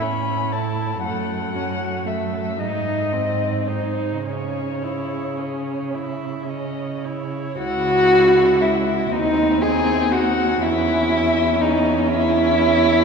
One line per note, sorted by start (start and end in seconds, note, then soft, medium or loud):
0.00 1.01 A2 soft
0.00 0.54 C#4 soft
0.00 0.54 C#5 soft
0.00 0.54 B5 medium
0.52 1.02 E4 soft
0.52 1.02 A4 soft
0.52 1.03 A5 medium
1.02 2.61 F#2 soft
1.02 1.57 A3 soft
1.02 1.55 A4 soft
1.02 2.08 F#5 medium
1.53 2.07 C#4 soft
1.53 2.06 F#4 soft
2.05 2.59 A3 soft
2.05 2.58 A4 soft
2.05 2.60 E5 medium
2.58 4.26 G#2 soft
2.58 3.14 D#4 soft
2.58 3.14 G#4 soft
2.58 3.70 D#5 medium
3.12 3.69 C4 soft
3.12 3.69 C5 soft
3.68 4.25 D#4 soft
3.68 4.26 G#4 soft
3.68 4.29 C5 soft
4.25 7.34 C#3 soft
4.25 4.85 C#4 soft
4.25 4.84 G#4 soft
4.25 5.95 C#5 soft
4.82 5.40 E4 soft
4.82 5.40 C#5 soft
5.38 5.96 C#4 soft
5.38 5.93 G#4 soft
5.94 6.49 E4 soft
5.94 6.51 E5 soft
6.49 7.07 C#4 soft
6.49 7.07 D#5 soft
7.05 7.58 E4 soft
7.05 7.57 C#5 soft
7.57 9.09 C#2 medium
7.57 9.09 E4 medium
7.57 8.63 F#4 loud
7.57 8.62 F#5 medium
8.61 9.14 E4 medium
8.61 9.13 E5 medium
9.11 10.60 D#2 medium
9.11 10.59 C4 medium
9.11 9.64 D#4 medium
9.11 9.62 D#5 medium
9.62 10.13 G#4 medium
9.62 10.13 G#5 medium
10.11 10.62 F#4 medium
10.11 10.64 F#5 medium
10.62 13.04 E2 medium
10.62 13.04 C#4 medium
10.62 11.63 E4 loud
10.62 11.63 E5 medium
11.61 12.10 D#4 medium
11.61 12.11 D#5 medium
12.09 13.04 E4 loud
12.09 13.04 E5 medium